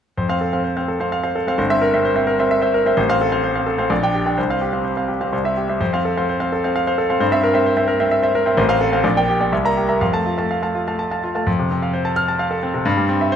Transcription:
0.17 F2 C5
0.29 C4 C5 F5
0.41 A4
0.53 C4 C5 F5
0.64 C5
0.77 C4 C5 F5
0.88 A4
1.00 C4 C5 F5
1.12 F5
1.23 C5 F5
1.35 A4
1.47 C4 C5 F5
1.58 G1 C5
1.70 C4 C5 E5
1.82 A#4
1.94 C4 C5 E5
2.05 C5
2.15 C4 C5 E5
2.27 A#4
2.39 C4 C5 E5
2.51 E5
2.62 C5 E5
2.74 A#4
2.86 C4 C5 E5
2.97 A1 C5
3.09 C4 C5 F5
3.21 A4
3.32 C4 C5 F5
3.44 C5
3.55 C4 C5 F5
3.67 A4
3.78 C4 C5 F5
3.90 A#1 D5
4.03 D4 D5 G5
4.14 G4
4.26 D4 D5 G5
4.38 C2 C5
4.50 C4 C5 F5
4.61 G4
4.72 C4 C5 F5
4.85 C5
4.96 C4 C5 F5
5.08 G4
5.21 C4 C5 F5
5.33 C2 C5
5.44 C4 C5 E5
5.57 G4
5.69 C4 C5 E5
5.81 F2 C5
5.93 C4 C5 F5
6.05 A4
6.17 C4 C5 F5
6.29 C5
6.40 C4 C5 F5
6.52 A4
6.64 C4 C5 F5
6.76 F5
6.87 C5 F5
6.98 A4
7.09 C4 C5 F5
7.20 G2 C5
7.32 C4 C5 E5
7.44 A#4
7.54 C4 C5 E5
7.66 C5
7.77 C4 C5 E5
7.88 A#4
8.00 C4 C5 E5
8.11 E5
8.23 C5 E5
8.35 A#4
8.46 C4 C5 E5
8.57 A1 C5
8.69 C4 C5 F5
8.81 A4
8.93 C4 C5 F5
9.04 A#1 D5
9.16 A#3 D5 G5
9.29 G4
9.40 A#3 D5 G5
9.52 C2 E5
9.65 A#3 E5 A#5
9.77 G4
9.89 A#3 E5 A#5
10.01 F2 F5
10.13 A3 F5 A5
10.26 F4
10.38 A3 F5 A5
10.51 F5
10.63 A3 F5 A5
10.75 F4
10.88 A3 F5 A5
10.99 A5
11.11 F5 A5
11.24 F4
11.35 A3 F5 A5
11.47 F2
11.59 C3
11.71 C4
11.82 F5
11.94 C5
12.05 A5
12.16 F6
12.28 A5
12.39 F5
12.51 A4
12.63 C4
12.74 C3
12.85 G2
12.97 G3
13.09 C4
13.21 E5
13.32 C5

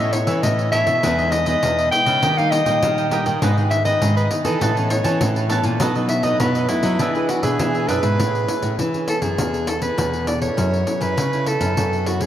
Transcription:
Already playing: A2
0.00 A3 C#4 E4 A4 C#5 D#5 E5
0.13 C#5, muted cavaquinho stroke, pandeiro
0.27 E3 A3 C#4 E4 A4 C#5 E5, pandeiro
0.43 A2 E3 D#5, pandeiro
0.59 A4 C#5 E5, pandeiro
0.72 A3 C#4 E4 A4 C#5 E5, pandeiro
0.87 B2 A4 C#5 E5, pandeiro
1.03 E2 E3 G#3 B3 D#4 E4 G#4 B4 D#5, pandeiro
1.18 G#3 B3 D#4 G#4 B4 D#5, pandeiro
1.31 D#5, muted cavaquinho stroke, pandeiro
1.46 G#3 B3 D#4 G#4 B4 D#5, pandeiro
1.63 E2 B2, pandeiro
1.78 G#4 B4 D#5, pandeiro
1.91 G#3 B3 D#4 G5, pandeiro
2.06 C#3 G#4 B4 D#5, pandeiro
2.22 D#3 G3 A#3 D#4 G4 A#4 D#5 G5, pandeiro
2.37 G3 A#3 D#4 A#4 D#5 F5 G5, pandeiro
2.51 D#5, muted cavaquinho stroke, pandeiro
2.66 A#2 G3 A#3 D#4 A#4 D#5 G5, pandeiro
2.82 A#2 D#3, pandeiro
2.98 A#4 D#5 G5, pandeiro
3.11 G3 A#3 D#4 G4 A#4 D#5 G5, pandeiro
3.26 D#3 A#4 D#5 G5, pandeiro
3.42 G#2 D#3 B3 D#4 G#4 B4 D#5, pandeiro
3.57 D#3 B3 D#4 G#4 B4 D#5, pandeiro
3.71 E5, muted cavaquinho stroke, pandeiro
3.85 D#3 B3 D#4 G#4 B4 D#5, pandeiro
4.01 G#2 D#3, pandeiro
4.17 G#4 B4 D#5, pandeiro
4.30 D#3 B3 D#4, pandeiro
4.44 E3 G#4 A4 B4 D#5, pandeiro
4.61 A2 E3 B3 C#4 A4 B4 C#5 A5, pandeiro
4.76 E3 B3 C#4 B4 C#5 A5, pandeiro
4.90 C#5, muted cavaquinho stroke, pandeiro
5.04 E3 B3 C#4 B4 C#5 A5, pandeiro
5.21 A2 E3, pandeiro
5.36 B4 C#5 A5, pandeiro
5.50 E3 B3 C#4 A4 B4 C#5 A5, pandeiro
5.64 A#2 B4 A5, pandeiro
5.80 B2 F#3 A3 D#4 A4 B4 D#5, pandeiro
5.95 F#3 A3 D#4 A4 B4 D#5, pandeiro
6.09 E5, muted cavaquinho stroke, pandeiro
6.23 F#3 A3 D#4 A4 B4 D#5, pandeiro
6.40 F#2 B2 B4, pandeiro
6.55 A4 B4 D#5, pandeiro
6.69 F#3 A3 D#4 E4, pandeiro
6.83 F#3 A4 B4 D#5, pandeiro
6.99 E3 B3 D4 G#4 B4 E5, pandeiro
7.15 B3 D4 G#4 B4 E5, pandeiro
7.29 F#4, muted cavaquinho stroke, pandeiro
7.43 B2 B3 D4 G#4 B4 E5, pandeiro
7.59 B2 E3, pandeiro
7.75 G#4 B4 E5, pandeiro
7.88 F#2 B3 D4 G#4 B4 E5, pandeiro
8.03 G#2 G#4 B4 E5, pandeiro
8.19 A2 A3 C#4 E4 G#4, pandeiro
8.35 pandeiro
8.47 C#4 E4 G#4, pandeiro
8.62 A2, pandeiro
8.79 E3, pandeiro
8.94 C#4 E4 G#4, pandeiro
9.08 A4, pandeiro
9.22 F#2 G#4, pandeiro
9.38 E2 E3 B3 D4 G#4, pandeiro
9.54 pandeiro
9.67 A4, pandeiro
9.82 B4, pandeiro
9.98 E2 B2 B3 D4 G#4, pandeiro
10.13 pandeiro
10.27 D5, pandeiro
10.41 C#4 E4 A4 C#5, pandeiro
10.57 F#2 F#3, pandeiro
10.74 pandeiro
10.87 C#4 E4 A4, pandeiro
11.01 F#2 B4, pandeiro
11.17 C#3, pandeiro
11.33 C#4 E4 A4, pandeiro
11.46 A4, pandeiro
11.61 F#2, pandeiro
11.77 F#2 F#3 B3 D4 A4, pandeiro
11.93 pandeiro
12.06 F#4, pandeiro
12.21 G#4, pandeiro

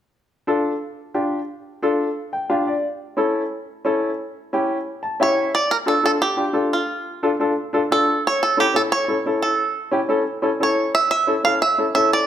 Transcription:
0.47 D4 F4 A4
1.14 D4 F4 G4
1.82 D4 F4 A4
2.33 G5
2.50 D4 F4 G4 F5
2.67 D5
3.17 C#4 E4 A4
3.85 C#4 E4 A4
4.53 C#4 E4 G4
5.03 A5
5.20 C#4 E4 G4 C#5 E5
5.55 D5
5.71 A#4
5.86 D4 F4 A4
6.03 D4 F4 A4
6.22 G4
6.37 D4 F4 G4
6.53 D4 F4 A4
6.73 F4
7.23 D4 F4 A4
7.40 D4 F4 A4
7.73 D4 F4 A4
7.91 D4 F4 A4
8.27 C#5
8.43 A4
8.57 C#4 E4 G4 A4
8.74 C#4 E4 A4
8.92 C#5
9.08 C#4 E4 A4
9.26 C#4 E4 A4
9.42 A4
9.91 C#4 E4 G4
10.09 C#4 E4 A4
10.42 C#4 E4 A4
10.60 C#4 E4 A4 C#5
10.95 E5
11.11 E5
11.27 C#4 E4 A4
11.43 C#4 E4 A4 F5
11.62 E5
11.78 C#4 E4 A4
11.95 C#4 E4 A4 E5
12.13 D5

